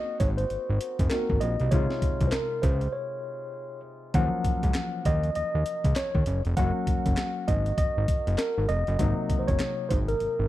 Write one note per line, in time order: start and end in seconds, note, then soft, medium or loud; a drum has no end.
0.00 1.07 A#3 medium
0.00 1.08 C4 medium
0.00 1.08 D#4 medium
0.00 1.08 F#4 medium
0.00 0.17 D#5 loud
0.20 0.45 G#1 medium
0.20 0.28 C#5 medium
0.20 kick loud
0.20 closed hi-hat medium
0.37 1.07 C5 medium
0.37 closed hi-hat soft
0.50 0.58 G#1 soft
0.50 closed hi-hat medium
0.69 0.79 G#1 medium
0.81 closed hi-hat medium
0.99 1.09 F#1 medium
0.99 kick medium
0.99 closed hi-hat medium
1.10 1.72 A#3 medium
1.10 1.72 C4 soft
1.10 1.72 D#4 soft
1.10 1.72 F#4 medium
1.10 1.42 A#4 medium
1.10 snare loud
1.10 clap medium
1.10 closed hi-hat medium
1.30 1.40 G#1 medium
1.30 kick loud
1.41 1.57 A#1 medium
1.41 1.72 D#5 medium
1.41 closed hi-hat medium
1.60 1.70 C2 medium
1.60 closed hi-hat soft
1.71 1.87 C#2 loud
1.71 4.11 C3 medium
1.71 4.10 G#3 medium
1.71 4.11 D#4 medium
1.71 4.11 F4 medium
1.71 2.28 C#5 medium
1.71 kick loud
1.71 closed hi-hat medium
1.90 snare medium
2.02 kick medium
2.02 closed hi-hat medium
2.21 2.30 C2 medium
2.21 kick loud
2.21 closed hi-hat medium
2.27 2.33 C5 medium
2.32 2.63 A#4 medium
2.32 snare loud
2.32 clap medium
2.32 closed hi-hat medium
2.62 2.88 C#2 medium
2.62 2.94 C5 medium
2.62 kick loud
2.62 closed hi-hat medium
2.81 closed hi-hat soft
2.93 3.80 C#5 medium
4.14 4.30 D#2 loud
4.14 6.54 F3 medium
4.14 6.53 F#3 medium
4.14 6.53 A#3 medium
4.14 6.53 C#4 medium
4.14 5.08 F#5 loud
4.14 kick loud
4.14 closed hi-hat medium
4.44 kick medium
4.44 closed hi-hat medium
4.63 4.73 C#2 medium
4.63 kick loud
4.63 closed hi-hat medium
4.74 snare loud
4.74 clap medium
4.74 closed hi-hat medium
5.05 5.30 D#2 medium
5.05 5.35 D#5 loud
5.05 kick medium
5.05 closed hi-hat medium
5.24 closed hi-hat soft
5.35 5.43 D#2 soft
5.35 5.98 D#5 loud
5.35 closed hi-hat medium
5.55 5.64 D#2 medium
5.66 closed hi-hat medium
5.84 5.94 C#2 medium
5.84 kick medium
5.84 closed hi-hat medium
5.96 6.42 C#5 loud
5.96 snare loud
5.96 clap medium
5.96 closed hi-hat medium
6.15 6.24 D#2 medium
6.15 kick loud
6.26 6.42 F#1 medium
6.26 closed hi-hat medium
6.45 6.55 F1 medium
6.45 closed hi-hat soft
6.57 6.72 F#1 loud
6.57 8.95 F#3 medium
6.57 8.95 A#3 medium
6.57 8.96 C#4 medium
6.57 8.96 F#4 medium
6.57 7.50 F#5 loud
6.57 kick loud
6.57 closed hi-hat medium
6.87 kick loud
6.87 closed hi-hat medium
7.06 7.15 F#1 medium
7.06 kick medium
7.06 closed hi-hat medium
7.17 snare loud
7.17 clap medium
7.17 closed hi-hat medium
7.48 7.73 G#1 loud
7.48 7.77 D#5 medium
7.48 kick medium
7.48 closed hi-hat medium
7.66 closed hi-hat soft
7.78 7.85 G#1 soft
7.78 8.40 D#5 medium
7.78 kick loud
7.78 closed hi-hat medium
7.97 8.07 G#1 medium
8.08 kick loud
8.08 closed hi-hat medium
8.27 8.37 F#1 medium
8.27 closed hi-hat medium
8.38 8.70 A#4 medium
8.38 snare loud
8.38 clap medium
8.38 closed hi-hat medium
8.58 8.67 G#1 medium
8.69 8.84 F1 medium
8.69 9.41 D#5 loud
8.69 closed hi-hat medium
8.87 8.97 F#1 loud
8.87 closed hi-hat medium
8.99 9.15 G#1 loud
8.99 10.48 C3 medium
8.99 10.48 F#3 medium
8.99 10.48 A#3 medium
8.99 10.48 D#4 medium
8.99 kick loud
8.99 closed hi-hat medium
9.29 kick medium
9.29 closed hi-hat medium
9.39 9.48 C5 medium
9.48 9.58 F#1 medium
9.48 9.91 C#5 medium
9.48 kick loud
9.48 closed hi-hat medium
9.59 snare loud
9.59 clap medium
9.59 closed hi-hat medium
9.89 10.15 G#1 medium
9.89 9.98 C5 medium
9.89 kick medium
9.89 closed hi-hat medium
10.08 10.48 A#4 medium
10.08 closed hi-hat soft
10.20 10.28 G#1 soft
10.20 closed hi-hat medium
10.39 10.48 G#1 medium